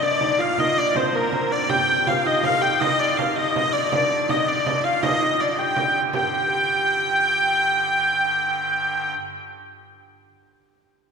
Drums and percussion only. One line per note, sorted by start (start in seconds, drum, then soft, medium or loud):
0.21 frame drum medium
0.58 frame drum medium
0.96 frame drum medium
1.32 frame drum medium
1.51 frame drum soft
1.70 frame drum medium
1.88 frame drum soft
2.07 frame drum loud
2.44 frame drum medium
2.81 frame drum loud
3.01 frame drum soft
3.19 frame drum medium
3.56 frame drum medium
3.92 frame drum medium
4.12 frame drum soft
4.29 frame drum medium
4.66 frame drum medium
5.03 frame drum loud
5.22 frame drum soft
5.76 frame drum medium
6.13 frame drum medium